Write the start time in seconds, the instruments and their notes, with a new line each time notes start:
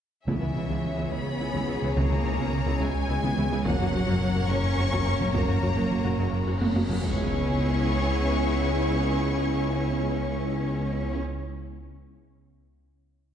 0.27 analog synth bass C#2, tuba C#2, detuned saw bass C#2, double bass section C#2, french horn section B2 C#4, ambient pad B2 C#4 G#4 C#5, synth arpeggio sound C#3, cello section E3, viola section B3 E4, violin section G#4 C#5 E5, taiko
0.40 double bass section C#2, analog synth bass C#2, viola section B3 E4, synth arpeggio sound B3
0.56 tuba C#2, double bass section C#2, analog synth bass C#3, synth arpeggio sound G#3, viola section B3 E4
0.70 analog synth bass C#2, double bass section C#2, synth arpeggio sound C#3, viola section B3 E4
0.84 analog synth bass C#3
0.97 analog synth bass C#2, double bass section C#2, synth arpeggio sound B3, viola section B3 E4
1.11 analog synth bass C#2, tuba C#2, double bass section C#2, synth arpeggio sound C#3, viola section B3 E4, cello section B3, violin section B5
1.26 analog synth bass C#2
1.40 analog synth bass C#2, tuba C#2, double bass section C#2, viola section B3 E4, synth arpeggio sound B3
1.53 analog synth bass C#2, double bass section C#2, synth arpeggio sound C#3, viola section B3 E4, taiko
1.68 analog synth bass C#2, tuba C#2, double bass section C#2, synth arpeggio sound E3, viola section B3 E4
1.82 double bass section C#2, analog synth bass C#3, synth arpeggio sound G#3, viola section B3 E4
1.95 analog synth bass C#2, tuba C#2, double bass section C#2, synth arpeggio sound C#3, cello section A#3, viola section B3 E4, violin section A#5, taiko
2.10 analog synth bass C#2, double bass section C#2, synth arpeggio sound B3, viola section B3 E4
2.24 tuba C#2, double bass section C#2, analog synth bass C#3, synth arpeggio sound G#3, viola section B3 E4
2.38 analog synth bass C#2, double bass section C#2, synth arpeggio sound C#3, viola section B3 E4
2.52 analog synth bass C#3
2.66 analog synth bass C#2, double bass section C#2, viola section B3 E4, synth arpeggio sound B3
2.80 analog synth bass C#2, tuba C#2, double bass section C#2, synth arpeggio sound C#3, cello section G#3, viola section B3 E4, violin section G#5
2.95 analog synth bass C#2
3.08 analog synth bass C#2, tuba C#2, double bass section C#2, synth arpeggio sound B3, viola section B3 E4
3.22 analog synth bass C#2, double bass section C#2, synth arpeggio sound C#3, viola section B3 E4, taiko
3.37 analog synth bass C#2, tuba C#2, double bass section C#2, synth arpeggio sound E3, viola section B3 E4
3.50 double bass section C#2, analog synth bass C#3, synth arpeggio sound G#3, viola section B3 E4
3.64 detuned saw bass F#1, tuba F#1, analog synth bass F#2, double bass section F#2, synth arpeggio sound F#3, cello section F#3, ambient pad A#3 C#4 F#4 C#5, viola section A#3 F#4, french horn section C#4, violin section A#4 C#5 F#5, taiko
3.79 analog synth bass F#2, double bass section F#2, viola section A#3 F#4, synth arpeggio sound F#4
3.93 tuba F#1, double bass section F#2, analog synth bass F#3, viola section A#3 F#4, synth arpeggio sound C#4
4.07 analog synth bass F#2, double bass section F#2, synth arpeggio sound F#3, viola section A#3 F#4
4.21 analog synth bass F#3
4.35 analog synth bass F#2, double bass section F#2, viola section A#3 F#4, synth arpeggio sound F#4, taiko low-mid
4.49 tuba F#1, analog synth bass F#2, double bass section F#2, synth arpeggio sound F#3, french horn section A#3, viola section A#3 F#4, cello section C#4, violin section C#6
4.64 analog synth bass F#2
4.78 tuba F#1, analog synth bass F#2, double bass section F#2, viola section A#3 F#4, synth arpeggio sound F#4
4.91 analog synth bass F#2, double bass section F#2, synth arpeggio sound F#3, viola section A#3 F#4, taiko
5.06 tuba F#1, analog synth bass F#2, double bass section F#2, viola section A#3 F#4, synth arpeggio sound A#3
5.19 double bass section F#2, analog synth bass F#3, viola section A#3 F#4, synth arpeggio sound C#4, taiko low-mid
5.34 tuba F#1, analog synth bass F#2, double bass section F#2, synth arpeggio sound F#3, viola section A#3 F#4, cello section A#3, violin section A#5, taiko, cymbal swell
5.48 analog synth bass F#2, double bass section F#2, viola section A#3 F#4, synth arpeggio sound F#4
5.62 tuba F#1, double bass section F#2, analog synth bass F#3, viola section A#3 F#4, synth arpeggio sound C#4
5.76 analog synth bass F#2, double bass section F#2, synth arpeggio sound F#3, viola section A#3 F#4
5.91 analog synth bass F#3
6.05 analog synth bass F#2, double bass section F#2, viola section A#3 F#4, synth arpeggio sound F#4, taiko low-mid
6.19 tuba F#1, analog synth bass F#2, double bass section F#2, synth arpeggio sound F#3, viola section A#3 F#4
6.33 analog synth bass F#2
6.47 tuba F#1, analog synth bass F#2, double bass section F#2, viola section A#3 F#4, synth arpeggio sound F#4
6.61 analog synth bass F#2, double bass section F#2, synth arpeggio sound F#3, viola section A#3 F#4, taiko high
6.75 tuba F#1, analog synth bass F#2, double bass section F#2, viola section A#3 F#4, synth arpeggio sound A#3, taiko high
6.89 double bass section F#2, analog synth bass F#3, viola section A#3 F#4, synth arpeggio sound C#4, taiko low
7.03 detuned saw bass C#2, tuba C#2, double bass section C#2, french horn section B3 E4, viola section B3 E4, ambient pad B3 C#4 E4 C#5, cello section C#4, violin section G#4 C#5 C#6, taiko low, impact